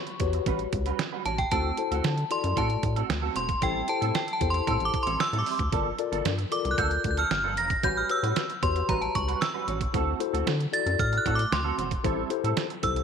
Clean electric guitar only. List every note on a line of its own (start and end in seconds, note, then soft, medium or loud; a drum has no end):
0.07 muted clean electric guitar stroke medium
0.34 muted clean electric guitar stroke soft
0.47 0.66 G3 medium
0.47 0.60 C#4 medium
0.47 0.59 F#4 loud
0.47 0.59 B4 loud
0.60 muted clean electric guitar stroke soft
0.74 muted clean electric guitar stroke soft
0.86 0.98 G3 medium
0.86 0.98 C#4 medium
0.86 0.99 F#4 medium
0.86 0.99 B4 medium
0.99 muted clean electric guitar stroke soft
1.12 1.24 G3 medium
1.12 1.24 C#4 medium
1.12 1.25 F#4 medium
1.12 1.26 B4 medium
1.25 1.41 G3 medium
1.25 1.38 C#4 medium
1.25 1.38 F#4 medium
1.25 1.38 C#5 medium
1.38 muted clean electric guitar stroke soft
1.51 1.76 A3 medium
1.51 1.76 C4 medium
1.51 1.76 F#4 medium
1.51 1.76 A4 medium
1.78 muted clean electric guitar stroke soft
1.91 2.03 A3 medium
1.91 2.03 C4 medium
1.91 2.04 F#4 medium
1.91 2.04 A4 medium
2.04 muted clean electric guitar stroke soft
2.17 muted clean electric guitar stroke soft
2.44 muted clean electric guitar stroke soft
2.56 2.76 A3 medium
2.56 2.69 C4 medium
2.56 2.69 F#4 medium
2.56 2.68 A4 medium
2.69 muted clean electric guitar stroke medium
2.83 muted clean electric guitar stroke soft
2.96 3.08 A3 medium
2.96 3.08 C4 medium
2.96 3.08 F#4 medium
2.96 3.09 A4 medium
3.09 muted clean electric guitar stroke soft
3.22 3.34 A3 medium
3.22 3.34 C4 medium
3.22 3.34 F#4 medium
3.22 3.35 A4 medium
3.35 3.51 A3 medium
3.35 3.48 C4 medium
3.35 3.47 F#4 medium
3.35 3.48 C5 medium
3.48 muted clean electric guitar stroke soft
3.61 3.86 G3 medium
3.61 3.86 C4 medium
3.61 3.86 E4 medium
3.61 3.86 A4 medium
3.88 muted clean electric guitar stroke soft
4.01 4.13 G3 medium
4.01 4.13 C4 medium
4.01 4.13 E4 medium
4.01 4.14 A4 medium
4.28 muted clean electric guitar stroke medium
4.54 muted clean electric guitar stroke soft
4.67 4.87 G3 medium
4.67 4.80 C4 medium
4.67 4.80 E4 medium
4.67 4.79 A4 medium
4.81 muted clean electric guitar stroke soft
4.94 muted clean electric guitar stroke soft
5.06 5.19 G3 medium
5.06 5.19 C4 medium
5.06 5.19 E4 medium
5.06 5.19 A4 medium
5.20 muted clean electric guitar stroke soft
5.33 5.45 G3 medium
5.33 5.45 C4 medium
5.33 5.45 E4 medium
5.33 5.46 A4 medium
5.46 5.62 G3 medium
5.46 5.59 C4 medium
5.46 5.58 E4 medium
5.46 5.59 C5 medium
5.59 muted clean electric guitar stroke soft
5.72 5.97 F3 medium
5.72 5.97 A#3 medium
5.72 5.97 D4 loud
5.72 5.97 A4 medium
5.99 muted clean electric guitar stroke soft
6.12 6.24 F3 medium
6.12 6.24 A#3 medium
6.12 6.24 D4 medium
6.12 6.25 A4 medium
6.38 muted clean electric guitar stroke soft
6.65 muted clean electric guitar stroke soft
6.78 6.98 F3 medium
6.78 6.90 A#3 medium
6.78 6.90 D4 medium
6.78 6.90 A4 loud
6.91 muted clean electric guitar stroke medium
7.04 muted clean electric guitar stroke soft
7.17 7.30 F3 soft
7.17 7.30 A#3 medium
7.17 7.30 D4 medium
7.17 7.30 A4 medium
7.31 muted clean electric guitar stroke soft
7.44 7.56 F3 medium
7.44 7.57 A#3 medium
7.44 7.57 D4 medium
7.44 7.58 A4 medium
7.57 7.73 F3 medium
7.57 7.70 A#3 medium
7.57 7.70 D4 medium
7.57 7.70 A#4 medium
7.71 muted clean electric guitar stroke soft
7.83 8.08 G3 medium
7.83 8.08 C#4 loud
7.83 8.08 F#4 loud
7.83 8.08 B4 loud
8.10 muted clean electric guitar stroke soft
8.23 8.35 G3 medium
8.23 8.36 C#4 medium
8.23 8.36 F#4 medium
8.23 8.36 B4 medium
8.37 muted clean electric guitar stroke soft
8.50 muted clean electric guitar stroke medium
8.76 muted clean electric guitar stroke medium
8.89 9.08 G3 medium
8.89 9.02 C#4 medium
8.89 9.01 F#4 medium
8.89 9.01 B4 medium
9.02 muted clean electric guitar stroke medium
9.15 muted clean electric guitar stroke soft
9.28 9.40 G3 medium
9.28 9.40 C#4 medium
9.28 9.40 F#4 medium
9.28 9.41 B4 medium
9.41 muted clean electric guitar stroke soft
9.54 9.66 G3 medium
9.54 9.66 C#4 medium
9.54 9.67 F#4 medium
9.54 9.68 B4 medium
9.67 9.83 G3 medium
9.67 9.81 C#4 medium
9.67 9.80 F#4 medium
9.67 9.81 C#5 medium
9.81 muted clean electric guitar stroke medium
9.94 10.18 A3 medium
9.94 10.19 C4 loud
9.94 10.19 F#4 loud
9.94 10.19 A4 loud
10.21 muted clean electric guitar stroke soft
10.33 10.45 A3 soft
10.33 10.46 C4 medium
10.33 10.46 F#4 medium
10.33 10.46 A4 medium
10.47 muted clean electric guitar stroke soft
10.60 muted clean electric guitar stroke soft
10.86 muted clean electric guitar stroke medium
11.13 muted clean electric guitar stroke medium
11.25 11.45 A3 medium
11.25 11.38 C4 loud
11.25 11.38 F#4 loud
11.25 11.37 A4 medium
11.39 muted clean electric guitar stroke soft
11.51 muted clean electric guitar stroke soft
11.64 11.77 A3 medium
11.64 11.77 C4 medium
11.64 11.77 F#4 medium
11.64 11.78 A4 medium
11.78 11.93 A3 medium
11.78 11.91 C4 medium
11.78 11.90 F#4 medium
11.78 11.91 C5 medium
11.91 muted clean electric guitar stroke soft
12.04 12.29 G3 medium
12.04 12.29 C4 loud
12.04 12.29 E4 loud
12.04 12.29 A4 loud
12.31 muted clean electric guitar stroke soft
12.44 12.56 G3 medium
12.44 12.56 C4 soft
12.44 12.57 E4 medium
12.44 12.57 A4 medium
12.70 muted clean electric guitar stroke medium
12.96 muted clean electric guitar stroke medium